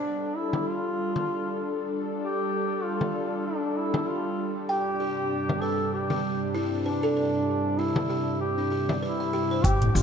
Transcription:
Already playing: G3 D4 A4
0.37 E4
0.53 frame drum
0.67 F4
1.16 frame drum
2.23 G4
2.84 F4
3.01 frame drum
3.46 D4
3.77 E4
3.94 frame drum
4.08 F4
4.69 G2 C3 D4 G4 G5
5.00 G4
5.49 frame drum
5.61 A4 B4
5.93 G4
6.10 G4, frame drum
6.55 E4
6.86 D4 B4
7.03 A4
7.17 B4
7.78 E4
7.96 frame drum
8.10 G4
8.41 G4
8.58 D4
8.72 G4
8.89 D5, frame drum
9.02 E4 B4
9.20 E5
9.33 G4
9.51 C5
9.64 G1 G3 D4 G4 A4 G5, kick, closed hi-hat, shaker
9.82 closed hi-hat, mid tom
9.90 G4
9.95 G1 F4 G4, shaker

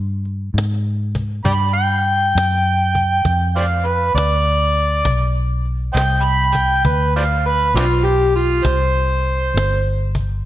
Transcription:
Already playing: G2
0.25 cajon slap
0.54 G#2
0.58 cajon slap
0.85 cajon slap
1.15 cajon bass
1.45 G2 D5 G5 B5, cajon bass
1.74 G5, cajon slap
2.06 cajon slap
2.35 F#2, cajon slap
2.65 cajon slap
2.95 cajon bass
3.25 F2, cajon bass, cajon slap
3.56 C5 D5 F5, cajon slap
3.84 B4, cajon slap
4.15 D2 D5, cajon slap
4.46 cajon slap
4.75 cajon slap
4.78 cajon slap
5.05 B1, cajon bass
5.35 cajon slap
5.65 cajon slap
5.94 C2 C5 D#5 G5, cajon slap
6.24 B5, cajon slap
6.55 G5, cajon bass
6.85 D2 B4, cajon bass
7.15 C5 D5 F5, cajon slap
7.45 B4, cajon slap
7.74 B1 C4 D4 F4, cajon slap
8.05 G4, cajon slap
8.35 F4, cajon slap
8.65 C2 C5, cajon bass
8.95 cajon slap
9.26 cajon slap
9.54 G1, cajon slap
9.85 cajon slap
10.15 cajon bass

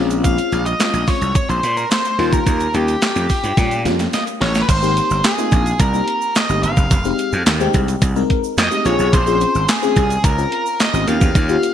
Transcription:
Already playing: A#1 G#3 C4 C#4 F4
0.10 closed hi-hat, shaker
0.24 F5, kick, closed hi-hat, shaker
0.38 closed hi-hat, shaker
0.52 A#1, closed hi-hat, shaker
0.66 D#5, closed hi-hat, shaker
0.79 G#3 C4 C#4 F4, snare, clap, closed hi-hat, shaker
0.94 A#1, closed hi-hat, shaker
1.07 G#3 C4 C#4 F4 C#5, kick, open hi-hat, shaker
1.21 C2, closed hi-hat, shaker
1.35 C#5, kick, closed hi-hat, shaker
1.49 A#1 C5, closed hi-hat, shaker
1.63 A#2, closed hi-hat, shaker
1.77 A#4, closed hi-hat, shaker
1.91 C5, snare, clap, closed hi-hat, shaker
2.05 closed hi-hat, shaker
2.18 D#2 G3 A#3 C#4 F4, open hi-hat
2.33 A#4, kick, closed hi-hat, shaker
2.46 D#2 A#4, kick, closed hi-hat, shaker
2.60 closed hi-hat, shaker
2.74 D#2 G3 A#3 C#4 F4 G4, closed hi-hat, shaker
2.88 closed hi-hat, shaker
3.02 snare, clap, closed hi-hat, shaker
3.16 F2, closed hi-hat, shaker
3.29 C#4 F4, kick, open hi-hat, shaker
3.43 G2 C#4 F4, closed hi-hat, shaker
3.57 A#2 G3 A#3 C#4 F4, kick, snare, closed hi-hat, shaker
3.71 closed hi-hat, shaker
3.85 F2 G3 A#3 C#4 F4, snare, closed hi-hat, shaker
3.99 snare, closed hi-hat, shaker
4.13 D#5, snare, closed hi-hat, shaker
4.27 closed hi-hat, shaker
4.41 A1 C#5, snare, open hi-hat
4.55 snare, closed hi-hat, shaker
4.62 B4
4.69 G#1 C5, kick, closed hi-hat, crash, shaker
4.82 A#3 C4 D#4 G4, shaker
4.97 closed hi-hat, shaker
5.10 G1, shaker
5.24 G#4, snare, clap, closed hi-hat, shaker
5.38 A#3 C4 D#4 F4, shaker
5.52 A#1, kick, closed hi-hat, shaker
5.66 closed hi-hat, shaker
5.80 C2 A#4, kick, closed hi-hat, shaker
5.93 A#3 C4 D#4 G4, shaker
6.08 closed hi-hat
6.22 shaker
6.35 D#5, snare, clap, closed hi-hat, shaker
6.49 G1 A#3 C4 D#4 G4, shaker
6.63 G1 F5, closed hi-hat, shaker
6.77 F#1, kick, shaker
6.91 F1, kick, closed hi-hat, shaker
7.04 G#3 C4 D#4 G4, shaker
7.19 closed hi-hat, shaker
7.32 F2, shaker
7.46 D#2, snare, clap, closed hi-hat, shaker
7.60 G#3 C4 D#4 G4, shaker
7.74 C2, kick, closed hi-hat, shaker
7.88 closed hi-hat, shaker
8.02 C2, kick, closed hi-hat, shaker
8.16 G#3 C4 D#4 A#4, shaker
8.30 kick, closed hi-hat
8.44 shaker
8.57 F2 D#5, snare, clap, closed hi-hat, shaker
8.71 G#3 C4 D#4 G4, shaker
8.85 A#1 C4 C#4 F4 G#4 C#5, closed hi-hat, shaker
8.99 B1, shaker
9.13 A#1 C5, kick, closed hi-hat, shaker
9.26 C4 C#4 F4 G#4, shaker
9.41 closed hi-hat, shaker
9.55 G#1, shaker
9.69 G#4, snare, clap, closed hi-hat, shaker
9.82 C4 C#4 F4 G#4, shaker
9.96 C2, kick, closed hi-hat, shaker
10.10 closed hi-hat, shaker
10.24 C#2 A#4, kick, closed hi-hat, shaker
10.38 C4 C#4 F4 A#4, shaker
10.52 closed hi-hat
10.66 shaker
10.80 D#5, snare, clap, closed hi-hat, shaker
10.93 G#1 C4 C#4 F4 G4, shaker
11.07 D#2 A#3 C#4 F4 G4 F5, closed hi-hat, shaker
11.21 E2, kick, shaker
11.35 D#2, kick, closed hi-hat, shaker
11.49 A#3 C#4 F4 G4, shaker
11.63 closed hi-hat, shaker

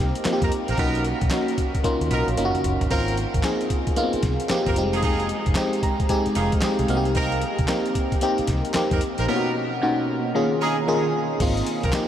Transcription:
Already playing: A#3 C4 D#4 G4
0.00 C2
0.15 closed hi-hat
0.25 A#3 C4 D#4 F4, muted fingered electric bass stroke, snare, clap, closed hi-hat
0.33 G4
0.42 F2 C4 D#4 A#4, kick, closed hi-hat
0.52 closed hi-hat
0.68 A#1 C4 D#4 A#4, closed hi-hat
0.78 B1 A#3 B3 C#4 D#4 F#4 A#4, kick, closed hi-hat
0.95 closed hi-hat
1.04 closed hi-hat
1.21 B1, kick, closed hi-hat
1.30 A#3 C#4 D#4 F#4, snare, clap, closed hi-hat
1.48 closed hi-hat
1.58 kick, closed hi-hat
1.75 kick, closed hi-hat
1.84 A#3 C#4 D#4 F4, kick, closed hi-hat, high tom
2.01 D#2, closed hi-hat
2.11 B1 B3 D#4 A#4, closed hi-hat, mid tom
2.28 A#1, closed hi-hat
2.37 A#3 C#4 D#4 F4, closed hi-hat, mid tom
2.45 F#4
2.55 closed hi-hat, mid tom
2.64 F#1, closed hi-hat, floor tom
2.81 G1, closed hi-hat, floor tom
2.91 G#1 A#3 C4 D#4 F4 A#4, kick, closed hi-hat
3.08 closed hi-hat
3.17 closed hi-hat
3.34 G#1, kick, closed hi-hat
3.43 A#3 C4 D#4 G#4, snare, clap, closed hi-hat
3.61 closed hi-hat
3.70 kick, closed hi-hat
3.87 kick, closed hi-hat
3.96 A#3 B3 D#4 F4, closed hi-hat
4.03 C4
4.13 muted fingered electric bass stroke, closed hi-hat
4.23 C2, kick, snare, closed hi-hat
4.40 closed hi-hat
4.49 A#3 C4 D#4 G4, muted fingered electric bass stroke, snare, clap, closed hi-hat
4.66 G#1 C4 F4 A#4, kick, closed hi-hat
4.76 F1 G3 C4 D#4 G4, closed hi-hat
4.83 G#3
4.93 D#4 F4 G#4, closed hi-hat
5.03 D#4 F4 G#4, kick, closed hi-hat
5.20 closed hi-hat
5.29 closed hi-hat
5.46 F1, kick, closed hi-hat
5.55 G#3 C4 D#4 G4, snare, clap, closed hi-hat
5.73 closed hi-hat
5.83 A#5, kick, closed hi-hat
6.00 kick, closed hi-hat
6.09 G#3 C4 D#4 G4 G#5, kick, closed hi-hat
6.26 muted fingered electric bass stroke, closed hi-hat
6.35 F1 D#4 F4 G#4 F5, snare, closed hi-hat
6.52 kick, closed hi-hat
6.61 G#3 C4 D#4 G4 D#5, muted fingered electric bass stroke, snare, clap, closed hi-hat
6.79 C2, closed hi-hat
6.88 C2 A#3 C4 D#4 F#4 F5, closed hi-hat
6.97 G4
7.05 closed hi-hat
7.15 C4 D#4 A#4, kick, closed hi-hat
7.32 closed hi-hat
7.42 closed hi-hat
7.59 C2, kick, closed hi-hat
7.68 A#3 C4 D#4 G4, snare, clap, closed hi-hat
7.86 closed hi-hat
7.95 kick, closed hi-hat
8.12 kick, closed hi-hat
8.21 A#3 C4 D#4 G4, closed hi-hat
8.38 muted fingered electric bass stroke, closed hi-hat
8.47 C2, kick, snare, closed hi-hat
8.65 closed hi-hat
8.74 A#3 C4 D#4 G4, muted fingered electric bass stroke, snare, clap, closed hi-hat
8.91 F2 C4 D#4 A#4, kick, closed hi-hat
9.01 closed hi-hat
9.18 A#1 C4 D#4 A#4, closed hi-hat
9.28 B2 A#3 B3 C#4 D#4 F4 A#4
9.36 F#4
9.81 B2 A#3 C#4 D#4 F#4
10.35 D#3 A#3 C#4 F4 G#4
10.61 C#4 D#4 G#4 A#5
10.88 D#3 A#3 C#4 F4 G#4 D#5
11.40 G#1 A#3 C4 D#4 F4, kick, closed hi-hat, crash
11.57 closed hi-hat
11.66 closed hi-hat
11.83 C2 C4 F4 A#4, kick, closed hi-hat
11.92 A#3 C4 D#4 G4, snare, clap, closed hi-hat

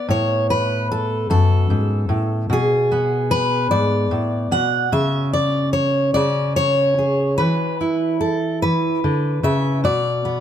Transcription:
Already playing: B3 D5
0.09 A2 C#5
0.50 B4
0.92 A4
1.30 F#2 A4
1.70 G#2
2.09 A2
2.50 B2 G#4
2.92 B3
3.31 B4
3.71 G#2 D5
4.11 A2
4.51 B2 F#5
4.92 C#3 E5
5.33 D5
5.73 C#5
6.14 C#3 D5
6.56 C#5
6.99 G#4
7.38 E3 B4
7.81 E4
8.21 A4
8.62 E3 B4
9.04 D3
9.43 C#3 E5
9.84 B2 D5
10.25 B3

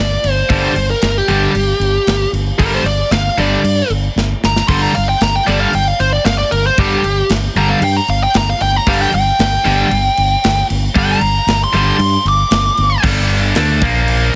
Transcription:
Already playing: D5
0.00 G1
0.24 G1, crash
0.32 C5
0.49 G1 G2 D3 G3, kick, crash
0.64 C5
0.76 G1, crash
0.90 A#4
1.02 G1, snare, crash
1.18 G4
1.28 G1 G2 D3 G3 G4, crash
1.55 G1, crash
1.79 G1, crash
2.07 G1, snare, crash
2.33 G1, crash
2.59 G1 G2 D3 G3 A#4, kick, crash
2.75 C5
2.84 G1 D5, crash
3.11 G1 F5, snare, crash
3.37 G1 G2 D3 G3 D5, crash
3.64 G2, crash
3.90 G1, crash
4.16 G1, snare
4.44 G1 A#5, snare
4.56 snare
4.68 G1 G2 D3 G3 C6, kick, crash
4.82 A#5
4.95 G1 F5, crash
5.09 G5
5.21 G1 A#5, snare, crash
5.36 G5
5.47 G1 G2 D3 G3 D5, crash
5.60 F5
5.73 G1 G5, crash
5.88 F5
6.00 G1 C5, crash
6.13 D5
6.25 G1 F5, snare, crash
6.38 D5
6.51 G1 A#4, crash
6.67 C5
6.78 G1 G2 D3 G3 G4, kick, crash
7.04 G1, crash
7.29 G1, snare, crash
7.55 G1 G2 D3 G3 A#5, crash
7.69 F5
7.81 G2 G5, crash
7.97 A#5
8.08 G1 F5, crash
8.23 G5
8.34 G1 A#5, snare, crash
8.49 F5
8.60 G1 G5, crash
8.76 A#5
8.87 G1 G2 D3 G3 F5, kick, crash
9.02 G5
9.12 G1 G5, crash
9.39 G1, snare, crash
9.65 G1 G2 D3 G3, crash
9.91 G1, crash
10.17 G1, crash
10.44 G1, snare, crash
10.70 G1, crash
10.95 G1 G2 D3 G3 G5, kick, crash
11.11 A#5
11.21 G1, crash
11.47 G1, snare, crash
11.64 C6
11.73 G1 G2 D3 G3, crash
11.99 G2, crash
12.25 G1 D6, crash
12.51 G1, snare, crash
12.77 G1, crash
13.03 G1 G2 D3 G3, kick, crash
13.29 crash
13.55 D2 D3 A3 D4, snare, crash
13.81 A#1 A#2 F3 A#3, kick, crash
14.08 crash

